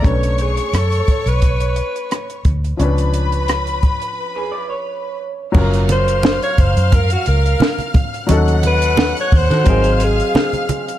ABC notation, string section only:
X:1
M:4/4
L:1/8
Q:"Swing 16ths" 1/4=87
K:Bdor
V:1 name="String section"
[cc']6- [cc'] z | [Bb]6- [Bb] z | [^e^e']8 | [ff']4 [^e^e']4 |]